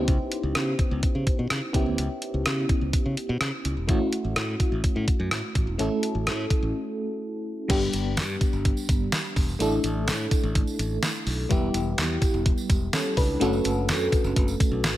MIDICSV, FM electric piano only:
0, 0, Header, 1, 2, 480
1, 0, Start_track
1, 0, Tempo, 476190
1, 80, Time_signature, 4, 2, 24, 8
1, 15091, End_track
2, 0, Start_track
2, 0, Title_t, "FM electric piano"
2, 0, Program_c, 0, 5
2, 0, Note_on_c, 0, 59, 66
2, 0, Note_on_c, 0, 61, 62
2, 0, Note_on_c, 0, 63, 45
2, 0, Note_on_c, 0, 64, 57
2, 0, Note_on_c, 0, 67, 73
2, 0, Note_on_c, 0, 72, 54
2, 29, Control_c, 0, 64, 127
2, 1714, Note_off_c, 0, 59, 0
2, 1718, Note_off_c, 0, 61, 0
2, 1722, Note_off_c, 0, 64, 0
2, 1727, Note_off_c, 0, 67, 0
2, 1746, Note_on_c, 0, 59, 69
2, 1755, Note_on_c, 0, 61, 62
2, 1763, Note_on_c, 0, 64, 63
2, 1771, Note_on_c, 0, 67, 73
2, 3634, Note_off_c, 0, 59, 0
2, 3639, Note_off_c, 0, 61, 0
2, 3643, Note_off_c, 0, 64, 0
2, 3647, Note_off_c, 0, 67, 0
2, 3906, Note_on_c, 0, 57, 70
2, 3913, Note_on_c, 0, 61, 58
2, 3922, Note_on_c, 0, 64, 61
2, 3930, Note_on_c, 0, 66, 73
2, 3932, Control_c, 0, 64, 0
2, 3935, Note_off_c, 0, 72, 0
2, 3938, Note_off_c, 0, 63, 0
2, 4120, Control_c, 0, 64, 127
2, 5794, Note_off_c, 0, 57, 0
2, 5798, Note_off_c, 0, 61, 0
2, 5802, Note_off_c, 0, 64, 0
2, 5806, Note_off_c, 0, 66, 0
2, 5827, Note_on_c, 0, 57, 65
2, 5835, Note_on_c, 0, 61, 61
2, 5843, Note_on_c, 0, 64, 59
2, 5851, Note_on_c, 0, 69, 75
2, 7715, Note_off_c, 0, 57, 0
2, 7719, Note_off_c, 0, 61, 0
2, 7723, Note_off_c, 0, 64, 0
2, 7727, Note_off_c, 0, 69, 0
2, 7743, Note_on_c, 0, 55, 72
2, 7753, Note_on_c, 0, 59, 60
2, 7761, Note_on_c, 0, 62, 65
2, 7770, Note_on_c, 0, 67, 74
2, 7774, Control_c, 0, 64, 0
2, 7932, Control_c, 0, 64, 127
2, 9633, Note_off_c, 0, 55, 0
2, 9638, Note_off_c, 0, 59, 0
2, 9642, Note_off_c, 0, 62, 0
2, 9646, Note_off_c, 0, 67, 0
2, 9668, Note_on_c, 0, 57, 68
2, 9678, Note_on_c, 0, 62, 67
2, 9685, Note_on_c, 0, 64, 62
2, 9693, Control_c, 0, 64, 0
2, 9694, Note_on_c, 0, 69, 79
2, 9872, Control_c, 0, 64, 127
2, 11555, Note_off_c, 0, 57, 0
2, 11560, Note_off_c, 0, 62, 0
2, 11564, Note_off_c, 0, 64, 0
2, 11568, Note_off_c, 0, 69, 0
2, 11585, Note_on_c, 0, 55, 75
2, 11593, Note_on_c, 0, 59, 65
2, 11601, Note_on_c, 0, 64, 65
2, 11609, Note_on_c, 0, 67, 83
2, 11610, Control_c, 0, 64, 0
2, 11804, Control_c, 0, 64, 127
2, 13011, Note_off_c, 0, 64, 0
2, 13015, Note_off_c, 0, 67, 0
2, 13039, Note_on_c, 0, 69, 62
2, 13046, Note_on_c, 0, 61, 55
2, 13267, Note_off_c, 0, 69, 0
2, 13271, Note_off_c, 0, 61, 0
2, 13279, Note_on_c, 0, 71, 68
2, 13285, Note_on_c, 0, 62, 56
2, 13474, Note_off_c, 0, 55, 0
2, 13478, Note_off_c, 0, 59, 0
2, 13507, Note_on_c, 0, 57, 72
2, 13515, Note_on_c, 0, 61, 72
2, 13524, Note_on_c, 0, 66, 70
2, 13530, Note_on_c, 0, 69, 78
2, 13531, Control_c, 0, 64, 0
2, 13689, Control_c, 0, 64, 127
2, 13735, Note_off_c, 0, 71, 0
2, 13738, Note_off_c, 0, 62, 0
2, 15091, Note_off_c, 0, 57, 0
2, 15091, Note_off_c, 0, 61, 0
2, 15091, Note_off_c, 0, 66, 0
2, 15091, Note_off_c, 0, 69, 0
2, 15091, End_track
0, 0, End_of_file